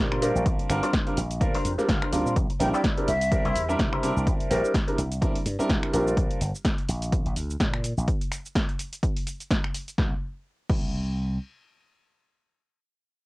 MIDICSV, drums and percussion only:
0, 0, Header, 1, 2, 480
1, 0, Start_track
1, 0, Tempo, 476190
1, 463, Time_signature, 4, 2, 24, 8
1, 13365, End_track
2, 0, Start_track
2, 0, Title_t, "Drums"
2, 119, Note_on_c, 9, 26, 78
2, 219, Note_off_c, 9, 26, 0
2, 223, Note_on_c, 9, 46, 123
2, 229, Note_on_c, 9, 82, 80
2, 324, Note_off_c, 9, 46, 0
2, 330, Note_off_c, 9, 82, 0
2, 365, Note_on_c, 9, 82, 45
2, 462, Note_on_c, 9, 36, 125
2, 463, Note_on_c, 9, 42, 74
2, 465, Note_off_c, 9, 82, 0
2, 469, Note_on_c, 9, 82, 33
2, 563, Note_off_c, 9, 36, 0
2, 564, Note_off_c, 9, 42, 0
2, 570, Note_off_c, 9, 82, 0
2, 598, Note_on_c, 9, 42, 49
2, 699, Note_off_c, 9, 42, 0
2, 702, Note_on_c, 9, 26, 65
2, 702, Note_on_c, 9, 46, 107
2, 709, Note_on_c, 9, 82, 77
2, 803, Note_off_c, 9, 26, 0
2, 803, Note_off_c, 9, 46, 0
2, 810, Note_off_c, 9, 82, 0
2, 838, Note_on_c, 9, 42, 35
2, 844, Note_on_c, 9, 82, 41
2, 938, Note_off_c, 9, 42, 0
2, 942, Note_on_c, 9, 36, 120
2, 942, Note_on_c, 9, 42, 77
2, 945, Note_off_c, 9, 82, 0
2, 945, Note_on_c, 9, 38, 120
2, 948, Note_on_c, 9, 82, 31
2, 1043, Note_off_c, 9, 36, 0
2, 1043, Note_off_c, 9, 42, 0
2, 1045, Note_off_c, 9, 38, 0
2, 1049, Note_off_c, 9, 82, 0
2, 1077, Note_on_c, 9, 42, 37
2, 1178, Note_off_c, 9, 42, 0
2, 1182, Note_on_c, 9, 46, 114
2, 1188, Note_on_c, 9, 82, 78
2, 1283, Note_off_c, 9, 46, 0
2, 1289, Note_off_c, 9, 82, 0
2, 1318, Note_on_c, 9, 42, 50
2, 1325, Note_on_c, 9, 82, 43
2, 1419, Note_off_c, 9, 42, 0
2, 1421, Note_on_c, 9, 36, 125
2, 1424, Note_on_c, 9, 42, 75
2, 1425, Note_off_c, 9, 82, 0
2, 1430, Note_on_c, 9, 82, 33
2, 1522, Note_off_c, 9, 36, 0
2, 1525, Note_off_c, 9, 42, 0
2, 1531, Note_off_c, 9, 82, 0
2, 1558, Note_on_c, 9, 46, 62
2, 1658, Note_off_c, 9, 46, 0
2, 1663, Note_on_c, 9, 46, 111
2, 1669, Note_on_c, 9, 82, 76
2, 1764, Note_off_c, 9, 46, 0
2, 1770, Note_off_c, 9, 82, 0
2, 1801, Note_on_c, 9, 38, 34
2, 1805, Note_on_c, 9, 82, 45
2, 1902, Note_off_c, 9, 38, 0
2, 1902, Note_on_c, 9, 36, 121
2, 1904, Note_on_c, 9, 42, 80
2, 1906, Note_off_c, 9, 82, 0
2, 1907, Note_on_c, 9, 38, 122
2, 1910, Note_on_c, 9, 82, 35
2, 2003, Note_off_c, 9, 36, 0
2, 2005, Note_off_c, 9, 42, 0
2, 2007, Note_off_c, 9, 38, 0
2, 2011, Note_off_c, 9, 82, 0
2, 2038, Note_on_c, 9, 26, 82
2, 2139, Note_off_c, 9, 26, 0
2, 2143, Note_on_c, 9, 46, 112
2, 2150, Note_on_c, 9, 82, 86
2, 2244, Note_off_c, 9, 46, 0
2, 2250, Note_off_c, 9, 82, 0
2, 2284, Note_on_c, 9, 82, 43
2, 2382, Note_on_c, 9, 36, 122
2, 2383, Note_on_c, 9, 42, 75
2, 2385, Note_off_c, 9, 82, 0
2, 2389, Note_on_c, 9, 82, 34
2, 2482, Note_off_c, 9, 36, 0
2, 2484, Note_off_c, 9, 42, 0
2, 2490, Note_off_c, 9, 82, 0
2, 2519, Note_on_c, 9, 42, 48
2, 2619, Note_off_c, 9, 42, 0
2, 2623, Note_on_c, 9, 46, 108
2, 2629, Note_on_c, 9, 82, 77
2, 2724, Note_off_c, 9, 46, 0
2, 2730, Note_off_c, 9, 82, 0
2, 2764, Note_on_c, 9, 82, 42
2, 2862, Note_on_c, 9, 36, 125
2, 2863, Note_on_c, 9, 42, 74
2, 2865, Note_off_c, 9, 82, 0
2, 2866, Note_on_c, 9, 38, 118
2, 2869, Note_on_c, 9, 82, 33
2, 2963, Note_off_c, 9, 36, 0
2, 2964, Note_off_c, 9, 42, 0
2, 2967, Note_off_c, 9, 38, 0
2, 2970, Note_off_c, 9, 82, 0
2, 2998, Note_on_c, 9, 42, 36
2, 3098, Note_off_c, 9, 42, 0
2, 3103, Note_on_c, 9, 46, 106
2, 3109, Note_on_c, 9, 82, 75
2, 3204, Note_off_c, 9, 46, 0
2, 3210, Note_off_c, 9, 82, 0
2, 3238, Note_on_c, 9, 46, 61
2, 3245, Note_on_c, 9, 82, 47
2, 3339, Note_off_c, 9, 46, 0
2, 3342, Note_on_c, 9, 36, 118
2, 3344, Note_on_c, 9, 42, 78
2, 3346, Note_off_c, 9, 82, 0
2, 3350, Note_on_c, 9, 82, 35
2, 3443, Note_off_c, 9, 36, 0
2, 3444, Note_off_c, 9, 42, 0
2, 3451, Note_off_c, 9, 82, 0
2, 3478, Note_on_c, 9, 42, 38
2, 3579, Note_off_c, 9, 42, 0
2, 3583, Note_on_c, 9, 46, 105
2, 3590, Note_on_c, 9, 82, 79
2, 3684, Note_off_c, 9, 46, 0
2, 3691, Note_off_c, 9, 82, 0
2, 3725, Note_on_c, 9, 82, 46
2, 3822, Note_on_c, 9, 36, 120
2, 3824, Note_on_c, 9, 42, 78
2, 3826, Note_off_c, 9, 82, 0
2, 3826, Note_on_c, 9, 38, 117
2, 3830, Note_on_c, 9, 82, 33
2, 3923, Note_off_c, 9, 36, 0
2, 3924, Note_off_c, 9, 42, 0
2, 3927, Note_off_c, 9, 38, 0
2, 3931, Note_off_c, 9, 82, 0
2, 3958, Note_on_c, 9, 26, 80
2, 4059, Note_off_c, 9, 26, 0
2, 4064, Note_on_c, 9, 46, 112
2, 4070, Note_on_c, 9, 82, 87
2, 4164, Note_off_c, 9, 46, 0
2, 4171, Note_off_c, 9, 82, 0
2, 4205, Note_on_c, 9, 82, 45
2, 4302, Note_on_c, 9, 36, 122
2, 4304, Note_on_c, 9, 42, 78
2, 4306, Note_off_c, 9, 82, 0
2, 4310, Note_on_c, 9, 82, 34
2, 4403, Note_off_c, 9, 36, 0
2, 4405, Note_off_c, 9, 42, 0
2, 4411, Note_off_c, 9, 82, 0
2, 4439, Note_on_c, 9, 42, 53
2, 4540, Note_off_c, 9, 42, 0
2, 4544, Note_on_c, 9, 46, 102
2, 4550, Note_on_c, 9, 82, 84
2, 4645, Note_off_c, 9, 46, 0
2, 4651, Note_off_c, 9, 82, 0
2, 4686, Note_on_c, 9, 82, 46
2, 4782, Note_on_c, 9, 36, 115
2, 4785, Note_on_c, 9, 42, 77
2, 4786, Note_off_c, 9, 82, 0
2, 4788, Note_on_c, 9, 38, 107
2, 4791, Note_on_c, 9, 82, 35
2, 4883, Note_off_c, 9, 36, 0
2, 4886, Note_off_c, 9, 42, 0
2, 4889, Note_off_c, 9, 38, 0
2, 4892, Note_off_c, 9, 82, 0
2, 4919, Note_on_c, 9, 42, 36
2, 5020, Note_off_c, 9, 42, 0
2, 5025, Note_on_c, 9, 46, 101
2, 5031, Note_on_c, 9, 82, 83
2, 5125, Note_off_c, 9, 46, 0
2, 5132, Note_off_c, 9, 82, 0
2, 5158, Note_on_c, 9, 42, 54
2, 5165, Note_on_c, 9, 82, 50
2, 5259, Note_off_c, 9, 42, 0
2, 5262, Note_on_c, 9, 36, 113
2, 5263, Note_on_c, 9, 42, 85
2, 5265, Note_off_c, 9, 82, 0
2, 5270, Note_on_c, 9, 82, 36
2, 5363, Note_off_c, 9, 36, 0
2, 5364, Note_off_c, 9, 42, 0
2, 5370, Note_off_c, 9, 82, 0
2, 5399, Note_on_c, 9, 46, 59
2, 5500, Note_off_c, 9, 46, 0
2, 5503, Note_on_c, 9, 46, 101
2, 5509, Note_on_c, 9, 82, 77
2, 5604, Note_off_c, 9, 46, 0
2, 5610, Note_off_c, 9, 82, 0
2, 5645, Note_on_c, 9, 82, 46
2, 5742, Note_on_c, 9, 36, 111
2, 5744, Note_on_c, 9, 42, 82
2, 5746, Note_off_c, 9, 82, 0
2, 5747, Note_on_c, 9, 38, 121
2, 5750, Note_on_c, 9, 82, 35
2, 5843, Note_off_c, 9, 36, 0
2, 5845, Note_off_c, 9, 42, 0
2, 5848, Note_off_c, 9, 38, 0
2, 5851, Note_off_c, 9, 82, 0
2, 5878, Note_on_c, 9, 26, 80
2, 5979, Note_off_c, 9, 26, 0
2, 5984, Note_on_c, 9, 46, 113
2, 5991, Note_on_c, 9, 82, 93
2, 6085, Note_off_c, 9, 46, 0
2, 6092, Note_off_c, 9, 82, 0
2, 6126, Note_on_c, 9, 82, 49
2, 6222, Note_on_c, 9, 36, 117
2, 6223, Note_on_c, 9, 42, 80
2, 6226, Note_off_c, 9, 82, 0
2, 6230, Note_on_c, 9, 82, 35
2, 6322, Note_off_c, 9, 36, 0
2, 6324, Note_off_c, 9, 42, 0
2, 6330, Note_off_c, 9, 82, 0
2, 6358, Note_on_c, 9, 42, 55
2, 6459, Note_off_c, 9, 42, 0
2, 6463, Note_on_c, 9, 46, 98
2, 6469, Note_on_c, 9, 82, 80
2, 6564, Note_off_c, 9, 46, 0
2, 6570, Note_off_c, 9, 82, 0
2, 6605, Note_on_c, 9, 82, 46
2, 6701, Note_on_c, 9, 36, 110
2, 6703, Note_on_c, 9, 42, 83
2, 6705, Note_on_c, 9, 38, 114
2, 6706, Note_off_c, 9, 82, 0
2, 6709, Note_on_c, 9, 82, 35
2, 6802, Note_off_c, 9, 36, 0
2, 6803, Note_off_c, 9, 42, 0
2, 6806, Note_off_c, 9, 38, 0
2, 6810, Note_off_c, 9, 82, 0
2, 6838, Note_on_c, 9, 42, 38
2, 6939, Note_off_c, 9, 42, 0
2, 6942, Note_on_c, 9, 46, 99
2, 6949, Note_on_c, 9, 82, 86
2, 7043, Note_off_c, 9, 46, 0
2, 7049, Note_off_c, 9, 82, 0
2, 7077, Note_on_c, 9, 46, 60
2, 7084, Note_on_c, 9, 82, 48
2, 7178, Note_off_c, 9, 46, 0
2, 7181, Note_on_c, 9, 36, 117
2, 7182, Note_on_c, 9, 42, 88
2, 7185, Note_off_c, 9, 82, 0
2, 7189, Note_on_c, 9, 82, 37
2, 7282, Note_off_c, 9, 36, 0
2, 7283, Note_off_c, 9, 42, 0
2, 7289, Note_off_c, 9, 82, 0
2, 7317, Note_on_c, 9, 42, 38
2, 7417, Note_off_c, 9, 42, 0
2, 7422, Note_on_c, 9, 46, 99
2, 7428, Note_on_c, 9, 82, 86
2, 7523, Note_off_c, 9, 46, 0
2, 7529, Note_off_c, 9, 82, 0
2, 7564, Note_on_c, 9, 82, 48
2, 7662, Note_on_c, 9, 36, 117
2, 7663, Note_on_c, 9, 42, 85
2, 7665, Note_off_c, 9, 82, 0
2, 7666, Note_on_c, 9, 38, 122
2, 7669, Note_on_c, 9, 82, 37
2, 7763, Note_off_c, 9, 36, 0
2, 7764, Note_off_c, 9, 42, 0
2, 7766, Note_off_c, 9, 38, 0
2, 7770, Note_off_c, 9, 82, 0
2, 7797, Note_on_c, 9, 26, 78
2, 7898, Note_off_c, 9, 26, 0
2, 7903, Note_on_c, 9, 46, 105
2, 7909, Note_on_c, 9, 82, 94
2, 8004, Note_off_c, 9, 46, 0
2, 8010, Note_off_c, 9, 82, 0
2, 8043, Note_on_c, 9, 82, 49
2, 8142, Note_on_c, 9, 36, 118
2, 8143, Note_on_c, 9, 42, 83
2, 8144, Note_off_c, 9, 82, 0
2, 8150, Note_on_c, 9, 82, 34
2, 8243, Note_off_c, 9, 36, 0
2, 8244, Note_off_c, 9, 42, 0
2, 8250, Note_off_c, 9, 82, 0
2, 8279, Note_on_c, 9, 42, 57
2, 8379, Note_off_c, 9, 42, 0
2, 8383, Note_on_c, 9, 26, 58
2, 8383, Note_on_c, 9, 46, 103
2, 8389, Note_on_c, 9, 82, 81
2, 8484, Note_off_c, 9, 26, 0
2, 8484, Note_off_c, 9, 46, 0
2, 8490, Note_off_c, 9, 82, 0
2, 8524, Note_on_c, 9, 82, 43
2, 8622, Note_on_c, 9, 36, 115
2, 8623, Note_on_c, 9, 42, 80
2, 8625, Note_off_c, 9, 82, 0
2, 8626, Note_on_c, 9, 38, 115
2, 8629, Note_on_c, 9, 82, 33
2, 8723, Note_off_c, 9, 36, 0
2, 8724, Note_off_c, 9, 42, 0
2, 8727, Note_off_c, 9, 38, 0
2, 8730, Note_off_c, 9, 82, 0
2, 8758, Note_on_c, 9, 42, 39
2, 8859, Note_off_c, 9, 42, 0
2, 8863, Note_on_c, 9, 46, 102
2, 8869, Note_on_c, 9, 82, 82
2, 8964, Note_off_c, 9, 46, 0
2, 8970, Note_off_c, 9, 82, 0
2, 8999, Note_on_c, 9, 42, 56
2, 9005, Note_on_c, 9, 82, 51
2, 9099, Note_off_c, 9, 42, 0
2, 9102, Note_on_c, 9, 36, 114
2, 9104, Note_on_c, 9, 42, 85
2, 9106, Note_off_c, 9, 82, 0
2, 9111, Note_on_c, 9, 82, 34
2, 9203, Note_off_c, 9, 36, 0
2, 9205, Note_off_c, 9, 42, 0
2, 9211, Note_off_c, 9, 82, 0
2, 9239, Note_on_c, 9, 46, 63
2, 9340, Note_off_c, 9, 46, 0
2, 9344, Note_on_c, 9, 46, 97
2, 9350, Note_on_c, 9, 82, 83
2, 9444, Note_off_c, 9, 46, 0
2, 9451, Note_off_c, 9, 82, 0
2, 9479, Note_on_c, 9, 42, 38
2, 9486, Note_on_c, 9, 82, 45
2, 9580, Note_off_c, 9, 42, 0
2, 9582, Note_on_c, 9, 36, 117
2, 9584, Note_on_c, 9, 42, 83
2, 9586, Note_off_c, 9, 82, 0
2, 9587, Note_on_c, 9, 38, 125
2, 9591, Note_on_c, 9, 82, 35
2, 9683, Note_off_c, 9, 36, 0
2, 9685, Note_off_c, 9, 42, 0
2, 9688, Note_off_c, 9, 38, 0
2, 9691, Note_off_c, 9, 82, 0
2, 9720, Note_on_c, 9, 26, 72
2, 9821, Note_off_c, 9, 26, 0
2, 9823, Note_on_c, 9, 46, 108
2, 9830, Note_on_c, 9, 82, 85
2, 9924, Note_off_c, 9, 46, 0
2, 9930, Note_off_c, 9, 82, 0
2, 9959, Note_on_c, 9, 42, 40
2, 9966, Note_on_c, 9, 82, 49
2, 10060, Note_off_c, 9, 42, 0
2, 10062, Note_on_c, 9, 36, 112
2, 10064, Note_on_c, 9, 38, 84
2, 10067, Note_off_c, 9, 82, 0
2, 10163, Note_off_c, 9, 36, 0
2, 10165, Note_off_c, 9, 38, 0
2, 10782, Note_on_c, 9, 36, 118
2, 10783, Note_on_c, 9, 49, 82
2, 10883, Note_off_c, 9, 36, 0
2, 10884, Note_off_c, 9, 49, 0
2, 13365, End_track
0, 0, End_of_file